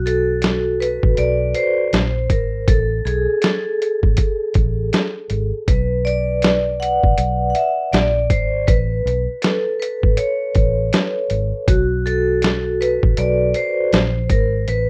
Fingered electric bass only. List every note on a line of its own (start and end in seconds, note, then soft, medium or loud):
0.00 0.99 B1 medium
1.03 1.17 A1 medium
1.18 1.52 B1 medium
1.93 2.30 A#1 medium
2.30 2.64 G#1 medium
2.68 3.02 A1 medium
3.05 3.26 B1 medium
4.03 4.17 G#1 medium
4.55 4.90 A1 medium
5.30 5.51 G#1 medium
5.68 6.99 B1 loud
7.04 7.17 A1 medium
7.18 7.52 B1 medium
7.93 8.30 A#1 loud
8.30 8.65 G#1 medium
8.68 9.02 A1 medium
9.06 9.26 B1 medium
10.03 10.17 G#1 medium
10.56 10.90 A1 medium
11.31 11.51 G#1 medium
11.68 12.99 B1 medium
13.03 13.17 A1 medium
13.18 13.52 B1 medium
13.93 14.27 A#1 medium
14.30 14.64 G#1 medium
14.68 14.90 A1 medium